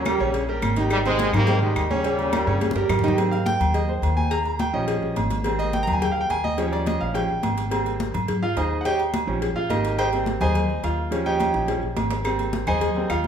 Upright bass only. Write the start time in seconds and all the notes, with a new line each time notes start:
Already playing: D#2
0.20 A#1
0.62 G#1
1.33 G#2
1.76 D#2
2.47 G2
2.75 G2
2.89 G#2
3.60 D#2
4.02 D#2
4.74 A#1
5.02 A#1
5.16 G#1
5.88 D#2
6.30 D#2
7.01 A#1
7.29 A#1
7.43 G#1
8.14 G#2
8.56 D#2
9.28 A#1
9.56 A#1
9.70 G#1
10.41 D#2
10.83 D#2
11.54 A#1
11.83 A#1
11.97 G#1
12.67 D#2
13.10 D#2